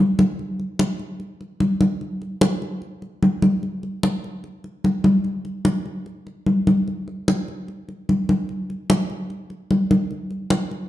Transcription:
0.19 high conga
0.39 high conga
0.60 high conga
0.79 high conga
0.99 high conga
1.20 high conga
1.41 high conga
1.60 high conga
1.81 high conga
2.01 high conga
2.22 high conga
2.41 high conga
2.62 high conga
2.82 high conga
3.02 high conga
3.23 high conga
3.42 high conga
3.63 high conga
3.83 high conga
4.03 high conga
4.24 high conga
4.44 high conga
4.64 high conga
4.84 high conga
5.04 high conga
5.24 high conga
5.45 high conga
5.65 high conga
5.85 high conga
6.06 high conga
6.27 high conga
6.46 high conga
6.67 high conga
6.88 high conga
7.08 high conga
7.28 high conga
7.48 high conga
7.68 high conga
7.89 high conga
8.09 high conga
8.29 high conga
8.49 high conga
8.70 high conga
8.90 high conga
9.10 high conga
9.30 high conga
9.50 high conga
9.71 high conga
9.91 high conga
10.11 high conga
10.31 high conga
10.50 high conga
10.71 high conga

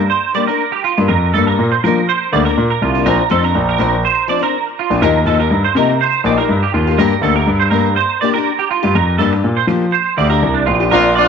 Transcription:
0.10 C5
0.34 G3 A#3 D4 D5
0.47 A#3 D4 A#4
0.72 G4
0.84 F4
0.97 G2 A#3 D4
1.08 F2 A#4
1.34 G2 G3 A#3 A4
1.38 D4
1.47 A#3 A#4
1.59 A#2
1.72 C5
1.84 F3 G3 A#3 D4 A#4
2.09 C5
2.33 D2 G3 A#3 D4 D5
2.45 A#3 D4 A#4
2.57 A#2
2.70 A#4
2.81 C2 F4
2.95 A#3 D4
3.06 A#1 F3 C4 D4 A#4
3.29 F2 F3 C4 D4 A4
3.43 C4 D4 A#4
3.55 A#1
3.69 A#4
3.78 A#1 F3 C4 D4 A#4
4.05 C5
4.28 F3 C4 D4 D5
4.39 C4 D4 A#4
4.79 F4
4.90 A#1 C4 D4
5.02 D#2 F3 A#3 D#4 G4 A#4
5.25 D#2 F3 A#3 D#4 G4 A4
5.40 D#4 G4 A#4
5.51 G2
5.64 C5
5.75 C3 F3 A#3 D#4 G4 A#4
6.01 C5
6.24 A#1 F3 A#3 D#4 G4 D5
6.38 A#3 D#4 G4 A#4
6.49 G2
6.63 G4
6.74 D#2 F4
6.87 A#3 G4
6.98 G2 A#3 D4 G4 A#4
7.21 D2 A#3 D4 G4 A4
7.35 D4 G4 A#4
7.47 G2
7.60 C5
7.70 G2 A#3 D4 A#4
7.76 G4
7.96 C5
8.21 A#3 D4 G4 D5
8.34 G4 A#4
8.38 D4
8.59 G4
8.71 F4
8.83 G2 D4 G4
8.95 F2 A#4
9.18 G2 A#3 D4 G4 A4
9.32 D4 G4, muted clean electric guitar stroke
9.44 A#2
9.57 C5
9.67 F3 A#3 D4 G4, muted clean electric guitar stroke
9.92 C5
10.17 D2 D4 G4 D5
10.30 D4 G4 A#4
10.42 C2
10.54 D4
10.66 A#1 F4
10.80 D4 G4
10.91 A#1 F3 C4 D4 F4 A#4
11.15 F3 C4 D4 F4 D5
11.20 D4

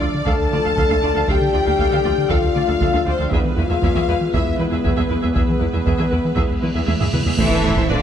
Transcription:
Already playing: F3 D4 A4 D5
0.01 D2 F3 F4 D5
0.14 D3
0.27 D2 D3 A4 F5 A5, taiko
0.40 D2
0.52 D2 D3 A3 F4 D5
0.64 D2 D4 A4 F5
0.77 D2 D3 A4 F5, taiko
0.90 D2 D4 A4 F5
1.03 D2 D4 F4 D5
1.15 D2 F3 A4 F5
1.28 D2 D3 G4 A4 F5 G5, taiko
1.42 D3
1.54 D2 D4 F4 D5
1.66 D2 D4 A4 F5
1.78 D2 D3 A4 F5, taiko
1.92 D2 D3 A3 A4 F5
2.04 D2 F3 F4 D5
2.18 D3
2.30 D2 D3 F4 A4 F5, taiko
2.44 D2
2.55 D2 D3 A3 F4 D5
2.68 D2 D4 A4 F5
2.80 D2 D3 A4 F5, taiko
2.93 D2 D4 A4 F5
3.06 D2 C4 D4 F4 C5 D5
3.19 D2 F3 A4 F5
3.31 E2 E3 G#3 B3 G#4 B4 E5, taiko
3.45 E3
3.56 E2 E4 F4 B4 F5
3.69 E2 E4 G#4 E5
3.82 E2 E3 G#4 E5, taiko
3.94 E2 E3 B3 G#4 E5
4.08 E2 G#3 E4 B4
4.21 E3
4.33 E2 E3 E4 G#4 E5, taiko
4.46 E2
4.58 E2 E3 B3 E4 B4
4.72 E2 E4 G#4 E5
4.84 E2 E3 G#4 E5, taiko
4.97 E2 E4 G#4 E5
5.10 E2 E4 B4
5.22 E2 G#3 G#4 E5
5.35 E2 E3 B3 G#4 B4 E5, taiko, cymbal swell
5.49 E3
5.60 E2 E4 B4
5.73 E2 E4 G#4 E5
5.86 E2 E3 G#4 E5, taiko
5.98 E2 E3 B3 G#4 E5
6.11 E2 G#3 E4 B4
6.25 E3
6.36 E2 E3 G#4 E5, taiko
6.50 E2
6.62 E2 E3 B3 E4 B4
6.74 E2 E4 G#4 E5
6.87 E2 E3 G#4 E5, taiko high
7.00 E2 E4 G#4 E5, taiko low-mid
7.13 E2 E4 B4, taiko mid
7.26 E2 G#3 G#4 E5, taiko low
7.38 A1 A2 E3 A3 E4 A4 C5 E5, taiko, impact
7.51 A1 A3 D4 E4 B4
7.63 A1 A2 E4 A4 C5, taiko low-mid
7.76 A1 A2 A3 E4 C5, taiko
7.89 A1 A2 D3 C4 D4 F4 B4 D5

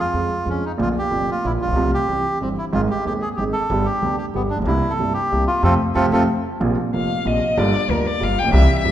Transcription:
0.00 F4
0.13 F2 C#3 F3 G#3 F4
0.45 F2 C#3 F3 G#3 F4
0.49 C#4
0.65 D#4
0.77 A#1 A#2 D3 F3 A#3 F4
0.82 F4
0.99 G4
1.10 F1 F2 D3 F3 A#3 F4
1.31 F4
1.44 A#1 A#2 D3 F3 A#3 E4 F4
1.61 A1 F4
1.68 A#1 B1
1.72 B1 C2 C3
1.76 C2 F3 A3 F4
1.94 G4
2.08 C2 C3 E3 G3 C4 G4
2.41 G1 G2 E3 G3 C4 G4
2.58 E4
2.73 G#1 G#2 D#3 G#3 C4 F4 G#4
2.91 G4
3.05 D#1 D#2 D#3 G#3 C4 G4 G#4
3.21 G#4
3.36 G#1 G#2 D#3 G#3 C4 G4 G#4
3.53 A4
3.70 G1 G2 D3 G3 B3 G4
3.85 G4
4.02 D2 D3 G3 B3 G4
4.18 G4
4.34 G1 G2 D3 G3 B3 G4
4.50 D4
4.55 A1
4.59 A#1 B1
4.63 B1 C2 C3
4.67 G3 A#3 E4
4.90 A4
4.99 G1 G2 C3 G3 A#3 E4
5.14 G4
5.32 C2 C3 G3 A#3 E4
5.47 F4
5.63 F2 C3 F3 A3 C4 F4 A4
5.95 F2 C3 F3 A3 C4 F4 A4
6.12 F2 C3 F3 A3 C4 F4 A4
6.60 A#1 A#2 C3 F3 A#3 F4
6.93 F1 F2 C3 F3 A#3 F4 F5
7.25 A#1 A#2 C3 F3 A#3 F4 D#5
7.58 G1 G2 D3 G3 A#3 F4 D5
7.88 D2 D3 G3 A#3 F4 A#4
8.07 D5
8.21 G1 G2 D3 G3 A#3 F4 F5
8.39 A1 G5
8.44 A#1 B1
8.52 C2 C3 E3 G3 C4 G4 E5
8.79 E5
8.84 G1 G2 E3 G3 C4 G4

